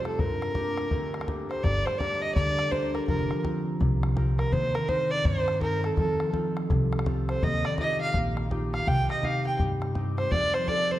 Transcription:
Already playing: harp C2 A3 C4 D#4 F4
0.05 fiddle A4, bodhran
0.19 harp G2, fiddle A#4, bodhran
0.30 bodhran
0.42 bodhran
0.55 harp A#3 D4 G4, bodhran
0.77 bodhran
0.91 harp D2, bodhran
1.14 bodhran
1.21 bodhran
1.27 harp A#3 D4 G4, bodhran
1.50 fiddle C5, bodhran
1.64 upright bass G1, harp G3, fiddle D5, bodhran
1.75 bodhran
1.85 fiddle C5, bodhran
1.98 harp D4 G4 A#4, fiddle D5, bodhran
2.22 fiddle D#5
2.35 upright bass D2, harp D3, fiddle D5, bodhran
2.59 bodhran
2.71 harp D4 G4 A#4, fiddle C5, bodhran
2.94 fiddle A#4, bodhran
3.08 upright bass F1, harp F3, fiddle A#4, bodhran
3.20 bodhran
3.31 bodhran
3.43 harp C4 F4 A#4, bodhran
3.80 upright bass C2, harp C3, bodhran
4.03 bodhran
4.16 harp C4 F4 A#4, bodhran
4.39 fiddle A#4, bodhran
4.52 upright bass D#2, harp D#3, fiddle C5, bodhran
4.64 bodhran
4.74 fiddle A#4, bodhran
4.88 harp C4 D#4 A#4, fiddle C5, bodhran
5.11 fiddle D5
5.25 upright bass G2, harp D#3, fiddle C5, bodhran
5.48 bodhran
5.61 harp C4 D#4 A#4, fiddle A#4, bodhran
5.84 fiddle A4, bodhran
5.97 upright bass F2, harp F3, fiddle A4, bodhran
6.09 bodhran
6.20 bodhran
6.33 harp C4 F4 A4, bodhran
6.57 bodhran
6.70 upright bass C2, harp C3, bodhran
6.93 bodhran
6.99 bodhran
7.06 harp C4 F4 A4, bodhran
7.29 fiddle C5, bodhran
7.43 upright bass D#2, harp D#3, fiddle D#5, bodhran
7.54 bodhran
7.65 fiddle D5, bodhran
7.78 harp D#4 F4 G4, fiddle D#5, bodhran
8.01 fiddle F5
8.14 upright bass A#1, harp A#3, bodhran
8.37 bodhran
8.50 harp D#4 F4 G4, bodhran
8.74 fiddle F5, bodhran
8.87 upright bass C2, harp C3, fiddle G5, bodhran
9.10 fiddle D#5, bodhran
9.23 harp C4 D#4 G4, fiddle F5, bodhran
9.47 fiddle G5
9.59 upright bass G2, harp G3, bodhran
9.82 bodhran
9.95 harp C4 D#4 G4, bodhran
10.18 fiddle C5, bodhran
10.31 upright bass F2, harp F3, fiddle D5, bodhran
10.43 bodhran
10.53 fiddle C5, bodhran
10.68 harp C4 F4 A4, fiddle D5, bodhran
10.91 fiddle C5

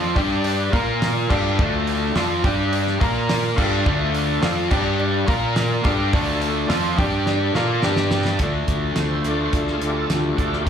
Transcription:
Already playing: fingered electric bass F2, distorted electric guitar F3 C4 F4, tonewheel organ F4 A4 D5, upright piano F4 A4 D5 F5
0.15 fingered electric bass G2, distorted electric guitar G3 D4 G4, tonewheel organ D4 G4 D5, upright piano D4 G4 D5 G5, kick, open hi-hat, cowbell
0.44 open hi-hat, cowbell
0.72 fingered electric bass A#2, distorted electric guitar A#3 F4 A#4, upright piano F4 A#4 F5 A#5, tonewheel organ F4 A#4 F5, kick, open hi-hat
1.02 snare, open hi-hat, cowbell
1.29 fingered electric bass G2, distorted electric guitar G3 D4 G4, upright piano F4 A4 D5 F5, tonewheel organ F4 A4 D5, kick, crash
1.59 fingered electric bass D2, distorted electric guitar D3 A3 D4, kick, cowbell
1.87 open hi-hat, cowbell
2.15 fingered electric bass F2, distorted electric guitar F3 C4 F4, upright piano F4 A4 D5 F5, snare, open hi-hat, cowbell
2.43 fingered electric bass G2, distorted electric guitar G3 D4 G4, upright piano D4 G4 D5 G5, tonewheel organ D4 G4 D5, kick, open hi-hat, cowbell
2.73 open hi-hat, cowbell
2.87 snare
3.00 fingered electric bass A#2, distorted electric guitar A#3 F4 A#4, tonewheel organ F4 A#4 F5, upright piano F4 A#4 F5 A#5, kick, open hi-hat
3.29 snare, open hi-hat, cowbell
3.56 fingered electric bass G2, distorted electric guitar G3 D4 G4, upright piano F4 A4 D5 F5, tonewheel organ F4 A4 D5, kick, crash
3.86 fingered electric bass D2, distorted electric guitar D3 A3 D4, kick, cowbell
4.14 open hi-hat
4.41 fingered electric bass F2, distorted electric guitar F3 C4 F4, upright piano F4 A4 D5 F5, snare, open hi-hat, cowbell
4.70 fingered electric bass G2, distorted electric guitar G3 D4 G4, upright piano D4 G4 D5 G5, tonewheel organ D4 G4 D5, kick, cowbell, crash
5.00 cowbell
5.27 fingered electric bass A#2, distorted electric guitar A#3 F4 A#4, upright piano F4 A#4 F5 A#5, tonewheel organ F4 A#4 F5, kick, open hi-hat
5.56 snare, open hi-hat, cowbell
5.84 fingered electric bass G2, distorted electric guitar G3 D4 G4, upright piano F4 A4 D5 F5, tonewheel organ F4 A4 D5, kick, open hi-hat
6.13 fingered electric bass D2, distorted electric guitar D3 A3 D4, kick, open hi-hat, cowbell
6.41 open hi-hat, cowbell
6.68 fingered electric bass F2, upright piano F4 A4 D5 F5, snare, open hi-hat, cowbell
6.72 distorted electric guitar F3 C4 F4
6.98 fingered electric bass G2, distorted electric guitar G3 D4 G4, upright piano D4 G4 D5 G5, tonewheel organ D4 G4 D5, kick, open hi-hat
7.26 snare, cowbell
7.55 fingered electric bass A#2, distorted electric guitar A#3 F4 A#4, upright piano F4 A4 D5 F5, snare
7.83 fingered electric bass G2, distorted electric guitar G3 D4 G4, upright piano D4 G4 D5 G5, tonewheel organ D4 G4 D5, snare, cowbell
7.96 snare
8.11 snare
8.25 snare
8.39 fingered electric bass D2, distorted electric guitar D3 A3 D4, steel-string acoustic guitar D3 A3 D4 F4 A4, kick, closed hi-hat
8.68 fingered electric bass D2, steel-string acoustic guitar D4 F4 A4, kick, closed hi-hat
8.96 fingered electric bass D2, steel-string acoustic guitar D3 A3 D4 F4 A4, tonewheel organ C5, snare, closed hi-hat
9.24 fingered electric bass D2, distorted electric guitar D3 A3 D4, tonewheel organ A3 D4 F4 D5, steel-string acoustic guitar D4 F4 A4, closed hi-hat
9.43 tonewheel organ C5
9.53 fingered electric bass D2, steel-string acoustic guitar A3 D4 F4 A4, kick, closed hi-hat
9.57 tonewheel organ A4
9.67 tonewheel organ G#4, snare
9.81 fingered electric bass D2, steel-string acoustic guitar D4 F4 A4, closed hi-hat
9.86 tonewheel organ G4
9.99 tonewheel organ A4
10.10 fingered electric bass D2, steel-string acoustic guitar D3 A3 D4 F4 A4, tonewheel organ G4, snare, closed hi-hat
10.37 fingered electric bass D2, overdriven electric guitar A3 D4, steel-string acoustic guitar F4 A4, tonewheel organ F#4, kick, closed hi-hat
10.41 overdriven electric guitar D3, steel-string acoustic guitar D4, tonewheel organ G4
10.53 snare
10.66 fingered electric bass C2, distorted electric guitar C3

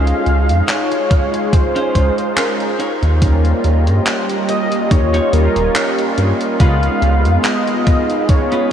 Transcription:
Already playing: analog synth bass C#2, analog polysynth G#3 D#4 F4 G#4, clean electric guitar C#4 F4 C5, string machine G#4 F5 C6, soft synth lead F5
0.07 closed hi-hat
0.26 analog synth bass C#2, closed hi-hat
0.49 analog synth bass F2, closed hi-hat
0.68 soft synth lead C#5, muted clean electric guitar stroke, clap, closed hi-hat
0.91 muted clean electric guitar stroke, closed hi-hat
1.10 muted clean electric guitar stroke, kick, closed hi-hat
1.33 muted clean electric guitar stroke, closed hi-hat
1.53 soft synth lead C5, kick, closed hi-hat
1.75 clean electric guitar C#4 F4 C5, closed hi-hat
1.95 analog synth bass C#2, analog polysynth G#3 D#4 F4 C5, kick, closed hi-hat
2.18 closed hi-hat
2.37 clean electric guitar C#4 F4 C5, soft synth lead A#4, clap, closed hi-hat
2.60 closed hi-hat
2.79 clean electric guitar D#4 G4 C#5, string machine G4 D#5 A#5, closed hi-hat
3.03 analog synth bass D#2, closed hi-hat
3.20 analog polysynth G3 A#3 C#4 F4, kick, closed hi-hat
3.45 closed hi-hat
3.64 analog synth bass D#2, closed hi-hat
3.87 analog synth bass G2, closed hi-hat
4.06 muted clean electric guitar stroke, clap, closed hi-hat
4.29 muted clean electric guitar stroke, closed hi-hat
4.49 soft synth lead D#5, muted clean electric guitar stroke, closed hi-hat
4.72 muted clean electric guitar stroke, closed hi-hat
4.91 analog synth bass D#2, soft synth lead C#5, kick, closed hi-hat
5.14 clean electric guitar D#4 G4 C#5, closed hi-hat
5.32 analog synth bass D#2, analog polysynth G3 A#3 C#4 F4, soft synth lead A#4, closed hi-hat
5.56 analog synth bass D#1, closed hi-hat
5.75 clean electric guitar D#4 G4 C#5, clap, closed hi-hat
5.98 closed hi-hat
6.18 analog synth bass G2, muted clean electric guitar stroke, closed hi-hat
6.41 closed hi-hat
6.58 analog synth bass C#2, analog polysynth G#3 B3 D#4 F4, clean electric guitar C#4 F4 B4, string machine G#4 F5 B5, soft synth lead F5, kick, closed hi-hat
6.83 closed hi-hat
7.02 analog synth bass C#2, closed hi-hat
7.25 analog synth bass F2, closed hi-hat
7.45 soft synth lead D#5, muted clean electric guitar stroke, clap, closed hi-hat
7.67 muted clean electric guitar stroke, closed hi-hat
7.87 muted clean electric guitar stroke, kick, closed hi-hat
8.10 muted clean electric guitar stroke, closed hi-hat
8.29 soft synth lead C#5, kick, closed hi-hat
8.52 clean electric guitar C#4 F4 B4, closed hi-hat

